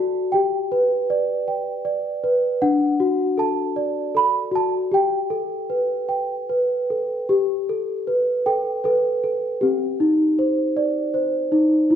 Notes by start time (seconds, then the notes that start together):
Already playing: F#4 A4 D5 A5
0.32 G4 G5
0.72 B4
1.10 D5
1.48 G5
1.85 D5
2.24 B4
2.62 D4 F#5
3.00 F#4
3.38 A4 A5
3.76 D5
4.15 A4 B5
4.52 F#4 A5
4.92 G4 G5
5.30 A4
5.70 B4
6.09 G5
6.49 B4
6.90 A4
7.29 G4
7.69 A4
8.07 B4
8.46 A4 G5
8.84 A4 B4
9.24 A4
9.61 C4 G4
10.00 D#4
10.39 C5
10.77 D5
11.14 C5
11.52 D#4
11.91 E4